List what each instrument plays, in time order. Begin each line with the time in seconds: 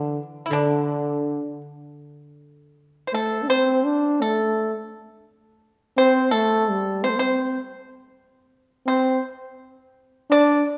Already playing: trombone D3, guzheng E3, pipa D4
0.46 pipa E4
0.50 trombone D3, guzheng D3, pipa D4
3.07 pipa C5
3.13 trombone A3, pipa A4
3.43 trombone D4
3.48 trombone C4, pipa C5
3.85 trombone D4
4.22 trombone A3, pipa A4
5.97 trombone C4, pipa C5
6.31 trombone A3, pipa A4
6.70 trombone G3
7.04 trombone C4, pipa C5
7.10 trombone A3
7.17 trombone C4, pipa C5
8.87 trombone C4, pipa C5
10.30 trombone D4, pipa D5